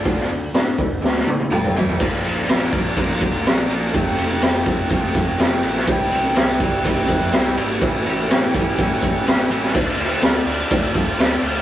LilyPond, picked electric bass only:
\new Staff \with { instrumentName = "Picked electric bass" } { \clef bass \time 4/4 \key a \phrygian \tempo 4 = 124 d,8 d,8 a,8 d,8 d,8 a,8 f,,8 a,,8 | bes,,8 bes,,8 bes,,8 bes,,8 bes,,8 d,8 bes,,8 bes,,8 | f,,8 f,,8 f,,8 f,,8 f,,4 f,,8 bes,,8 | c,8 c,8 c,8 c,8 c,8 f,8 c,8 gis,,8 |
a,,8 a,,8 a,,8 a,,8 a,,4 a,,8 a,,8 | \key d \minor d,8 d,8 d,8 d,8 d,8 d,8 d,8 d,8 | }